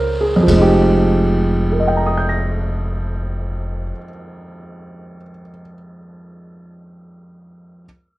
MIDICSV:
0, 0, Header, 1, 4, 480
1, 0, Start_track
1, 0, Key_signature, -4, "minor"
1, 0, Tempo, 1217039
1, 189, Time_signature, 4, 2, 24, 8
1, 3228, End_track
2, 0, Start_track
2, 0, Title_t, "Grand piano"
2, 0, Program_c, 0, 0
2, 0, Control_c, 0, 64, 127
2, 0, Note_on_c, 0, 56, 50
2, 0, Note_on_c, 0, 58, 42
2, 0, Note_on_c, 0, 61, 45
2, 0, Note_on_c, 0, 65, 57
2, 0, Note_on_c, 0, 70, 48
2, 0, Note_on_c, 0, 72, 49
2, 0, Note_on_c, 0, 73, 44
2, 0, Note_on_c, 0, 77, 42
2, 0, Note_on_c, 0, 80, 40
2, 43, Note_off_c, 0, 72, 0
2, 82, Note_on_c, 0, 68, 47
2, 108, Note_off_c, 0, 70, 0
2, 143, Note_on_c, 0, 41, 60
2, 169, Note_on_c, 0, 53, 55
2, 184, Note_off_c, 0, 56, 0
2, 190, Note_off_c, 0, 58, 0
2, 191, Note_on_c, 0, 56, 51
2, 193, Note_off_c, 0, 77, 0
2, 193, Control_c, 0, 64, 0
2, 194, Note_off_c, 0, 73, 0
2, 194, Note_off_c, 0, 80, 0
2, 198, Note_off_c, 0, 61, 0
2, 205, Note_off_c, 0, 65, 0
2, 218, Note_on_c, 0, 63, 55
2, 243, Note_on_c, 0, 67, 64
2, 244, Note_off_c, 0, 68, 0
2, 254, Control_c, 0, 64, 127
2, 677, Note_on_c, 0, 70, 37
2, 708, Note_on_c, 0, 75, 37
2, 740, Note_on_c, 0, 79, 34
2, 777, Note_on_c, 0, 82, 33
2, 814, Note_on_c, 0, 87, 33
2, 858, Note_on_c, 0, 91, 31
2, 903, Note_on_c, 0, 94, 27
2, 1510, Note_off_c, 0, 41, 0
2, 1536, Note_off_c, 0, 53, 0
2, 1559, Note_off_c, 0, 56, 0
2, 1585, Note_off_c, 0, 63, 0
2, 1610, Note_off_c, 0, 67, 0
2, 2029, Note_off_c, 0, 70, 0
2, 2060, Note_off_c, 0, 75, 0
2, 2091, Note_off_c, 0, 79, 0
2, 2128, Note_off_c, 0, 82, 0
2, 2166, Note_off_c, 0, 87, 0
2, 2209, Note_off_c, 0, 91, 0
2, 2255, Note_off_c, 0, 94, 0
2, 3096, Control_c, 0, 64, 0
2, 3228, End_track
3, 0, Start_track
3, 0, Title_t, "Upright bass"
3, 0, Program_c, 1, 32
3, 0, Note_on_c, 1, 37, 72
3, 172, Note_off_c, 1, 37, 0
3, 188, Note_on_c, 1, 29, 71
3, 1540, Note_off_c, 1, 29, 0
3, 3228, End_track
4, 0, Start_track
4, 0, Title_t, "Drums"
4, 188, Note_on_c, 9, 36, 43
4, 189, Note_on_c, 9, 51, 51
4, 228, Note_off_c, 9, 36, 0
4, 228, Note_off_c, 9, 51, 0
4, 3228, End_track
0, 0, End_of_file